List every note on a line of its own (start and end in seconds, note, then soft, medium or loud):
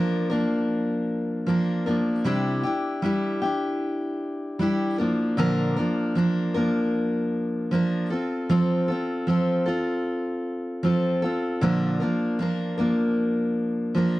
0.00 0.30 F3 medium
0.00 0.31 A#3 medium
0.00 0.30 D4 medium
0.00 0.28 A#4 medium
0.30 1.45 F3 soft
0.30 1.47 A#3 soft
0.30 1.48 D4 medium
0.30 1.47 A#4 medium
1.46 1.86 F3 medium
1.46 1.87 A#3 medium
1.46 1.86 D4 medium
1.46 1.85 A#4 medium
1.86 2.25 F3 soft
1.86 2.25 A#3 medium
1.86 2.25 D4 medium
1.86 2.25 A#4 medium
2.24 2.64 C3 medium
2.24 2.65 G3 medium
2.24 2.65 D4 medium
2.24 2.64 E4 medium
2.24 2.62 G4 medium
2.63 3.02 D4 medium
2.63 3.03 E4 medium
2.63 3.03 G4 medium
3.02 3.42 G3 medium
3.02 3.43 D4 medium
3.02 3.42 E4 medium
3.02 3.40 G4 medium
3.42 4.60 D4 soft
3.42 4.60 E4 medium
3.42 4.59 G4 medium
4.59 4.99 G3 medium
4.59 4.98 D4 medium
4.59 4.99 E4 medium
4.59 4.98 G4 medium
4.98 5.37 F3 soft
4.98 5.37 A#3 medium
4.98 5.38 D4 medium
4.98 5.38 A#4 medium
5.37 5.77 A#2 medium
5.37 5.77 D3 medium
5.37 5.77 F3 medium
5.37 5.77 A#3 medium
5.37 5.76 D4 medium
5.37 5.75 A#4 loud
5.76 6.14 F3 soft
5.76 6.15 A#3 soft
5.76 6.16 D4 medium
5.76 6.16 A#4 medium
6.15 6.55 F3 medium
6.15 6.55 A#3 medium
6.15 6.54 D4 medium
6.15 6.53 A#4 medium
6.54 7.71 F3 soft
6.54 7.71 A#3 soft
6.54 7.72 D4 medium
6.54 7.72 A#4 medium
7.71 8.11 F3 medium
7.71 8.11 A#3 medium
7.71 8.12 D4 medium
7.71 8.10 A#4 medium
8.10 8.49 C4 soft
8.10 8.50 F4 medium
8.10 8.50 A4 medium
8.49 8.89 F3 medium
8.49 8.89 C4 medium
8.49 8.89 F4 medium
8.49 8.87 A4 medium
8.88 9.27 C4 medium
8.88 9.28 F4 medium
8.88 9.27 A4 medium
9.27 9.66 F3 medium
9.27 9.67 C4 medium
9.27 9.66 F4 medium
9.27 9.65 A4 medium
9.66 10.83 C4 medium
9.66 10.85 F4 medium
9.66 10.83 A4 medium
10.83 11.22 F3 medium
10.83 11.23 C4 medium
10.83 11.23 F4 medium
10.83 11.21 A4 medium
11.22 11.62 C4 soft
11.22 11.62 F4 soft
11.22 11.61 A4 medium
11.61 12.00 A#2 medium
11.61 12.01 D3 medium
11.61 12.01 F3 medium
11.61 12.01 A#3 medium
11.61 12.00 D4 medium
11.61 11.99 A#4 medium
12.00 12.38 F3 soft
12.00 12.39 A#3 medium
12.00 12.40 D4 medium
12.00 12.39 A#4 medium
12.39 12.78 F3 medium
12.39 12.78 A#3 medium
12.39 12.77 D4 medium
12.39 12.76 A#4 medium
12.78 13.93 F3 soft
12.78 13.95 A#3 medium
12.78 13.96 D4 medium
12.78 13.95 A#4 medium
13.95 14.20 F3 medium
13.95 14.20 A#3 medium
13.95 14.20 D4 medium
13.95 14.20 A#4 medium